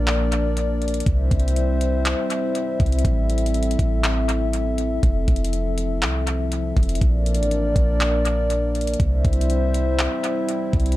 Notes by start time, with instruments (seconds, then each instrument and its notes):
Already playing: 808-style bass A#1, analog synth pad F3 A#3 D4 A#4 D5
0.07 clap, closed hi-hat
0.32 closed hi-hat
0.57 closed hi-hat
0.82 closed hi-hat
0.88 closed hi-hat
0.94 closed hi-hat
1.00 closed hi-hat
1.06 808-style bass C2, analog synth pad G3 C4 E4 C5 E5, kick, closed hi-hat
1.31 808-style bass C2, kick, closed hi-hat
1.40 closed hi-hat
1.48 closed hi-hat
1.56 closed hi-hat
1.81 closed hi-hat
2.05 clap, closed hi-hat
2.30 closed hi-hat
2.55 closed hi-hat
2.80 808-style bass C2, kick, closed hi-hat
2.86 closed hi-hat
2.92 closed hi-hat
2.99 closed hi-hat
3.05 808-style bass A1, analog synth pad A4, kick, closed hi-hat
3.30 closed hi-hat
3.38 closed hi-hat
3.46 closed hi-hat
3.54 closed hi-hat
3.63 closed hi-hat
3.71 closed hi-hat
3.79 808-style bass A1, kick, closed hi-hat
4.04 clap, closed hi-hat
4.29 closed hi-hat
4.53 closed hi-hat
4.78 closed hi-hat
5.03 808-style bass F1, analog synth pad F3, kick, closed hi-hat
5.28 808-style bass F1, kick, closed hi-hat
5.36 closed hi-hat
5.44 closed hi-hat
5.53 closed hi-hat
5.78 closed hi-hat
6.02 808-style bass C2, clap, closed hi-hat
6.27 closed hi-hat
6.52 closed hi-hat
6.77 808-style bass F1, kick, closed hi-hat
6.83 closed hi-hat
6.89 closed hi-hat
6.95 closed hi-hat
7.01 808-style bass A#1, analog synth pad A#3 D4 A#4 D5, kick, closed hi-hat
7.26 closed hi-hat
7.34 closed hi-hat
7.39 808-style bass A1
7.43 closed hi-hat
7.51 closed hi-hat
7.76 808-style bass A#1, kick, closed hi-hat
8.00 clap, closed hi-hat
8.25 closed hi-hat
8.50 closed hi-hat
8.75 closed hi-hat
8.81 closed hi-hat
8.87 closed hi-hat
8.94 closed hi-hat
9.00 808-style bass C2, analog synth pad G3 C4 E4 C5 E5, kick, closed hi-hat
9.25 808-style bass C2, kick, closed hi-hat
9.33 closed hi-hat
9.41 closed hi-hat
9.50 closed hi-hat
9.74 closed hi-hat
9.99 clap, closed hi-hat
10.24 closed hi-hat
10.49 closed hi-hat
10.73 808-style bass C2, kick, closed hi-hat
10.80 closed hi-hat
10.86 closed hi-hat
10.92 closed hi-hat